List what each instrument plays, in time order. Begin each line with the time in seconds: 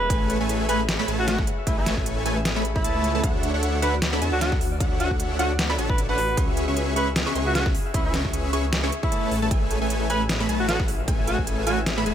Already playing: alto saxophone B4, harp C#5
0.01 harp E5
0.10 detuned saw bass A1, supersaw synth A3 A4 B4 C#5 G#5, harp G#4, synth pluck G#5, kick, closed hi-hat
0.21 harp E5
0.29 harp C#5, closed hi-hat
0.40 detuned saw bass A1, supersaw synth A3 A4 B4 C#5 G#5, harp E5, synth pluck G#5
0.49 harp G#4, closed hi-hat
0.60 harp E5
0.69 supersaw synth A3 A4 B4 C#5 G#5, harp G#4, alto saxophone B4, synth pluck G#5, closed hi-hat
0.80 harp E5
0.89 harp C#5, snare, closed hi-hat
0.99 supersaw synth A3 A4 B4 C#5 B5, harp E5, synth pluck B5
1.08 detuned saw bass A1, supersaw synth A3 A4 B4 C#5 A5, harp G#4, synth pluck A5, closed hi-hat
1.19 alto saxophone F#4, harp E5
1.28 alto saxophone F#4, harp G#4, snare, closed hi-hat
1.38 supersaw synth A4 B4 C#5 F#5, synth pluck F#5, kick
1.47 harp C#5, closed hi-hat
1.58 harp E5
1.67 detuned saw bass A1, supersaw synth A3 A4 B4 C#5 G#5, alto saxophone E4, harp G#4, synth pluck G#5, kick, closed hi-hat
1.78 alto saxophone E4, harp E5
1.86 harp G#4, snare, closed hi-hat
1.97 supersaw synth A3 A4 B4 C#5 G#5, harp E5, synth pluck G#5, kick
2.06 harp C#5, closed hi-hat
2.17 harp E5
2.25 supersaw synth A3 A4 B4 C#5 G#5, harp G#4, synth pluck G#5, closed hi-hat
2.36 harp E5
2.45 harp G#4, snare, closed hi-hat
2.56 supersaw synth A3 A4 B4 C#5 B5, harp E5, synth pluck B5
2.64 harp C#5, closed hi-hat
2.75 supersaw synth A3 A4 B4 C#5 B5, alto saxophone E4, harp E5, synth pluck B5, kick
2.84 detuned saw bass C#2, supersaw synth A3 A4 B4 C#5 A5, harp G#4, synth pluck A5, closed hi-hat
2.95 harp E5
3.04 harp G#4, closed hi-hat
3.15 supersaw synth A3 A4 B4 C#5 A5, harp E5, synth pluck A5
3.23 detuned saw bass D2, supersaw synth D4 A4 C#5 E5 F#5, harp F#4, synth pluck F#5, kick, closed hi-hat
3.34 harp D5
3.43 harp F#4, closed hi-hat
3.54 supersaw synth D4 A4 C#5 E5 F#5, harp D5, synth pluck F#5
3.63 harp F#4, closed hi-hat
3.74 harp D5
3.82 supersaw synth D4 A4 C#5 E5 F#5, harp F#4, alto saxophone B4, synth pluck F#5, closed hi-hat
3.93 harp D5
4.02 harp F#4, snare, closed hi-hat
4.13 supersaw synth D4 A4 C#5 E5 B5, harp D5, synth pluck B5
4.22 detuned saw bass E2, supersaw synth D4 A4 C#5 E5 A5, harp F#4, synth pluck A5, closed hi-hat
4.32 detuned saw bass D2, alto saxophone F#4, harp D5
4.41 alto saxophone F#4, harp F#4, snare, closed hi-hat
4.52 supersaw synth D4 A4 C#5 E5 F#5, harp D5, synth pluck F#5, kick
4.61 harp F#4, open hi-hat
4.72 harp D5
4.80 supersaw synth D4 A4 C#5 E5 F#5, harp F#4, synth pluck F#5, kick, closed hi-hat
4.91 harp D5
5.00 alto saxophone F#4, harp F#4, closed hi-hat
5.11 supersaw synth D4 A4 C#5 E5 F#5, harp D5, synth pluck F#5, kick
5.20 harp F#4, closed hi-hat
5.31 harp D5
5.39 supersaw synth D4 A4 C#5 E5 F#5, alto saxophone F#4, harp F#4, synth pluck F#5, closed hi-hat
5.50 harp D5
5.59 harp F#4, snare, closed hi-hat
5.70 supersaw synth D4 A4 C#5 E5 B5, harp D5, synth pluck B5
5.78 detuned saw bass A1, supersaw synth D4 A4 C#5 E5 A5, harp F#4, synth pluck A5, closed hi-hat
5.89 alto saxophone B4, harp D5, kick
5.98 harp F#4, closed hi-hat
6.09 supersaw synth D4 A4 C#5 E5 F#5, alto saxophone B4, harp D5, synth pluck F#5
6.18 harp F#4, open hi-hat
6.29 harp D5
6.37 detuned saw bass C#2, supersaw synth C#4 G#4 B4 E5 C#6, harp G#4, synth pluck C#6, kick, closed hi-hat
6.48 harp E5
6.57 harp G#4, closed hi-hat
6.68 detuned saw bass C#2, supersaw synth C#4 G#4 B4 E5 C#6, harp E5, synth pluck C#6
6.77 harp G#4, closed hi-hat
6.87 harp E5
6.96 supersaw synth C#4 G#4 B4 E5 C#6, harp G#4, alto saxophone B4, synth pluck C#6, closed hi-hat
7.07 harp E5
7.16 harp G#4, snare, closed hi-hat
7.26 supersaw synth C#4 G#4 B4 E5 C#6, harp E5, synth pluck C#6
7.35 detuned saw bass C#2, supersaw synth C#4 G#4 B4 E5 C#6, harp G#4, synth pluck C#6, closed hi-hat
7.46 alto saxophone F#4, harp E5
7.55 alto saxophone F#4, harp G#4, snare, closed hi-hat
7.66 supersaw synth C#4 G#4 B4 B5, harp E5, synth pluck B5, kick
7.75 harp G#4, open hi-hat
7.86 harp E5
7.94 detuned saw bass C#2, supersaw synth C#4 G#4 B4 E5 C#6, alto saxophone E4, harp G#4, synth pluck C#6, kick, closed hi-hat
8.05 alto saxophone E4, harp E5
8.14 harp G#4, snare, closed hi-hat
8.25 supersaw synth C#4 G#4 B4 E5 C#6, harp E5, synth pluck C#6, kick
8.33 harp G#4, closed hi-hat
8.44 harp E5
8.53 supersaw synth C#4 G#4 B4 E5 C#6, harp G#4, synth pluck C#6, closed hi-hat
8.64 harp E5
8.72 harp G#4, snare, closed hi-hat
8.83 supersaw synth C#4 G#4 B4 E5 C#6, harp E5, synth pluck C#6
8.92 harp G#4, closed hi-hat
9.03 supersaw synth C#4 G#4 B4 E5 C#6, alto saxophone E4, harp E5, synth pluck C#6, kick
9.12 supersaw synth A3 A4 B4 C#5 A5, harp G#4, synth pluck A5, closed hi-hat
9.23 harp E5
9.31 detuned saw bass A1, harp G#4, open hi-hat
9.42 supersaw synth A3 A4 B4 C#5 A5, harp E5, synth pluck A5
9.51 detuned saw bass A1, supersaw synth A3 A4 B4 C#5 G#5, harp G#4, synth pluck G#5, kick, closed hi-hat
9.62 harp E5
9.71 harp G#4, closed hi-hat
9.81 supersaw synth A3 A4 B4 C#5 G#5, harp E5, synth pluck G#5
9.90 harp G#4, closed hi-hat
10.01 harp E5
10.10 supersaw synth A3 A4 B4 C#5 G#5, harp G#4, alto saxophone B4, synth pluck G#5, closed hi-hat
10.21 harp E5
10.29 harp G#4, snare, closed hi-hat
10.40 supersaw synth A3 A4 B4 C#5 B5, harp E5, synth pluck B5
10.49 detuned saw bass B1, supersaw synth A3 A4 B4 C#5 A5, harp G#4, synth pluck A5, closed hi-hat
10.60 detuned saw bass A1, alto saxophone F#4, harp E5
10.68 alto saxophone F#4, harp G#4, snare, closed hi-hat
10.80 supersaw synth A3 A4 B4 C#5 F#5, harp E5, synth pluck F#5, kick
10.88 harp G#4, open hi-hat
10.99 harp E5
11.08 supersaw synth A3 A4 B4 C#5 G#5, harp G#4, synth pluck G#5, kick, closed hi-hat
11.19 harp E5
11.27 alto saxophone F#4, harp G#4, closed hi-hat
11.38 harp E5, synth pluck G#5, kick
11.47 harp G#4, closed hi-hat
11.58 harp E5
11.66 supersaw synth A3 A4 B4 C#5 G#5, alto saxophone F#4, harp G#4, synth pluck G#5, closed hi-hat
11.78 harp E5
11.86 harp G#4, snare, closed hi-hat
11.97 supersaw synth A3 A4 B4 C#5 B5, harp E5, synth pluck B5
12.06 detuned saw bass E1, supersaw synth A3 A4 B4 C#5 A5, harp G#4, synth pluck A5, closed hi-hat